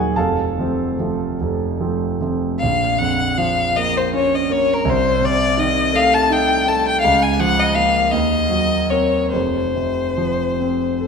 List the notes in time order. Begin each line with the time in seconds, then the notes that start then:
Already playing: D#1 D#2 F#3 A#3 D#4 F#4 G#4 F#5 G#5
0.16 F1 F2 A4 F5 A5
0.59 F3 A3 C4
0.99 F3 A3 C4
1.41 F1 F2
1.80 F3 A3 C4
2.21 F3 A3 C4
2.59 A#1 F5
2.98 F2 F#5
3.38 F3 F5
3.76 A#3 D#5
3.97 C5
4.13 C#4 C#5
4.35 D#5
4.50 A#3 C#5
4.74 A#4
4.85 C2
4.90 C5
5.21 C3 D5
5.58 D#3 D#5
5.93 A3 F5
6.14 A5
6.30 D#4 G5
6.68 A3 A5
6.86 G5
7.01 C#2 F5
7.22 G#5
7.40 F3 F#5
7.59 D#5
7.75 A#3 A#4 F5
8.11 D#2 D#5
8.50 F#3
8.90 C4 A#4 C#5
9.32 F1 F2 C5
9.75 C3
10.18 F3
10.60 C4
11.01 A4